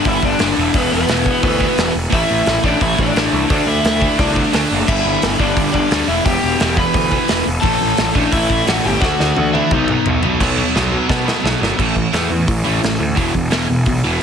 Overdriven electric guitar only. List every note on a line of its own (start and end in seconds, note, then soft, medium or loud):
0.06 0.22 E4 medium
0.06 0.24 E5 medium
0.24 0.72 D4 medium
0.24 0.77 D5 loud
0.77 0.91 B3 medium
0.77 0.92 B4 medium
0.92 1.40 B3 medium
0.92 1.42 B4 loud
1.43 1.91 B3 medium
1.43 1.91 B4 medium
2.14 2.61 E4 medium
2.14 2.65 E5 medium
2.65 2.80 D4 medium
2.65 2.82 D5 medium
2.82 2.97 E4 medium
2.82 2.99 E5 loud
3.00 3.47 D4 medium
3.00 3.47 D5 medium
3.51 3.67 D4 medium
3.51 3.67 D5 medium
3.67 4.15 E4 medium
3.67 4.20 E5 loud
4.19 4.67 D4 medium
4.19 4.67 D5 loud
4.88 5.36 E4 medium
4.88 5.36 E5 loud
5.40 5.72 D4 medium
5.40 5.72 D5 medium
5.73 6.06 D4 medium
5.73 6.05 D5 loud
6.08 6.24 E4 medium
6.08 6.25 E5 loud
6.25 6.74 G4 medium
6.25 6.79 G5 loud
6.79 7.44 B4 medium
6.79 7.43 B5 loud
7.61 8.11 A4 medium
7.61 8.10 A5 loud
8.15 8.31 D4 medium
8.15 8.31 D5 medium
8.31 8.64 E4 medium
8.31 8.67 E5 loud
8.68 8.84 F#4 medium
8.68 8.85 F#5 loud
8.85 9.01 G4 medium
8.85 9.01 G5 loud
9.01 9.50 F#4 medium
9.01 9.49 F#5 loud
9.53 9.70 E4 medium
9.53 9.73 E5 medium
9.72 10.04 D#4 medium
9.72 10.06 D#5 medium